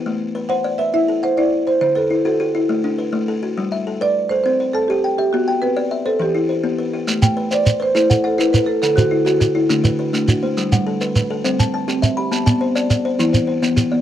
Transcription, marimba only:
\new Staff \with { instrumentName = "Marimba" } { \time 12/8 \key a \dorian \tempo 4. = 137 r4. fis''4 e''8 e''4 c''8 d''4 c''8 | c''8 a'4 a'4. r2. | r4. d''4 c''8 c''4 a'8 g'4 g'8 | fis'4 b'4. a'8 g'2 r4 |
r4. d''4 c''8 c''4 a'8 b'8 b'8 a'8 | a'8 fis'4 fis'4. r2. | r1. | r1. | }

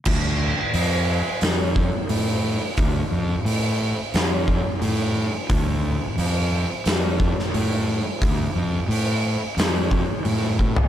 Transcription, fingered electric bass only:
\new Staff \with { instrumentName = "Fingered electric bass" } { \clef bass \time 4/4 \key d \minor \tempo 4 = 88 d,4 f,4 f,4 a,4 | d,8 f,8 a,4 f,4 a,4 | d,4 f,4 f,4 a,4 | d,8 f,8 a,4 f,4 a,4 | }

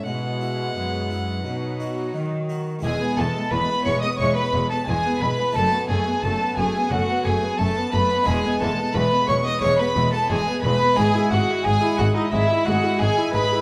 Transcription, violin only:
\new Staff \with { instrumentName = "Violin" } { \time 4/4 \key e \major \tempo 4 = 88 fis''2. r4 | gis'8 a'8 b'8 cis''16 dis''16 cis''16 b'8 a'16 gis'8 b'8 | a'8 gis'8 a'8 gis'8 fis'8 gis'8 a'8 b'8 | gis'8 a'8 b'8 cis''16 dis''16 cis''16 b'8 a'16 gis'8 b'8 |
gis'8 fis'8 gis'8 fis'16 dis'16 e'8 fis'8 gis'8 b'8 | }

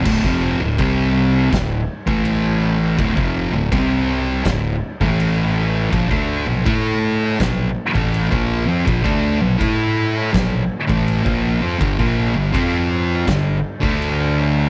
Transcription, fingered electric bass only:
\new Staff \with { instrumentName = "Fingered electric bass" } { \clef bass \time 4/4 \key d \minor \tempo 4 = 82 d,,16 f,,8 d,,16 c,4 d,,8 r16 a,,4~ a,,16 | d,,16 f,,8 d,,16 c,4 d,,8 r16 a,,4~ a,,16 | bes,,16 d,8 bes,,16 a,4 bes,,8 r16 a,,8 bes,,8 f,16 | bes,,16 d,8 bes,,16 a,4 bes,,8 r16 a,,8 bes,,8 f,16 |
g,,16 bes,,8 g,,16 f,4 g,,8 r16 d,4~ d,16 | }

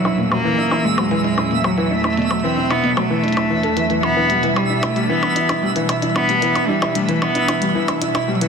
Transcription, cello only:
\new Staff \with { instrumentName = "Cello" } { \time 4/4 \key e \minor \tempo 4 = 113 fis8 ais4 gis4. fis8 a8~ | a8 c'8 b8 a2 b8~ | b8 g8 a8 b4 r4 b8~ | b8 g8 a8 b4 r4 fis8 | }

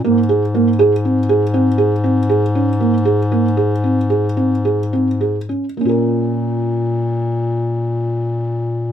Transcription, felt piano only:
\new Staff \with { instrumentName = "Felt piano" } { \time 11/8 \key bes \minor \tempo 4 = 112 bes8 aes'8 bes8 aes'8 c'8 aes'8 c'8 aes'8 c'8 aes'8 des'8 | bes8 aes'8 bes8 aes'8 c'8 aes'8 c'8 aes'8 c'8 aes'8 des'8 | <bes des' f' bes'>1~ <bes des' f' bes'>4. | }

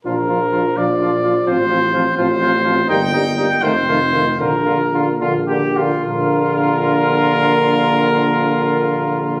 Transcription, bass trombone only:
\new Staff \with { instrumentName = "Bass trombone" } { \clef bass \time 6/8 \key bes \major \tempo 4. = 76 bes,,4. bes,,4. | a,,4. a,,4. | g,,4. f,,4. | bes,,4. bes,,4. |
bes,,2.~ | bes,,2. | }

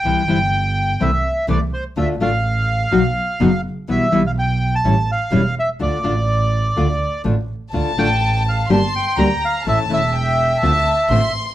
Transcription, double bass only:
\new Staff \with { instrumentName = "Double bass" } { \clef bass \time 4/4 \key d \minor \tempo 4 = 125 c,8 g,,4. c,8 r8 c,8 r8 | d,8 a,,4. b,,8 r8 fis,,8 r8 | b,,8 b,,4. a,,8 r8 e,,8 r8 | d,8 a,,4. d,8 r8 a,,8 r8 |
d,8 a,,4. g,,8 r8 d,8 r8 | a,,8 e,,4. d,8 r8 a,,8 r8 | }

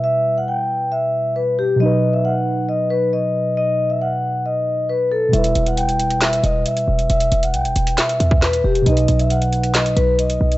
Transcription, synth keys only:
\new Staff \with { instrumentName = "Synth keys" } { \time 4/4 \key e \minor \tempo 4 = 136 <b, g e' b'>1 | <b, fis dis' b'>1~ | <b, fis dis' b'>1 | <b, g e' b'>1~ |
<b, g e' b'>1 | <b, fis dis' b'>1 | }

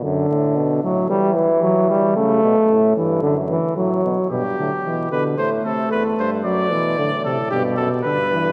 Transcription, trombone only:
\new Staff \with { instrumentName = "Trombone" } { \clef bass \time 4/4 \key g \major \tempo 4 = 112 d4. fis8 g8 e8 fis8 g8 | a4. e8 d8 e8 fis4 | b,8 d8 e8 d8 a2 | fis8 e8 d8 c8 b,4 d8 e8 | }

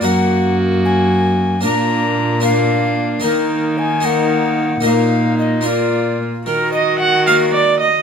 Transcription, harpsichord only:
<<
  \new Staff \with { instrumentName = "Harpsichord" } { \time 6/8 \key ees \minor \tempo 4. = 75 <bes ges' bes'>2. | <bes d' bes'>4. <bes d' bes'>4. | <bes ees' bes'>4. <bes ees' bes'>4. | <bes ees' bes'>4. <bes f' bes'>4. |
r4. <bes ges' bes'>4. | }
  \new Staff \with { instrumentName = "Harpsichord" } { \clef bass \time 6/8 \key ees \minor ges,2. | bes,2. | ees2. | bes,2~ bes,8 r8 |
ees2. | }
>>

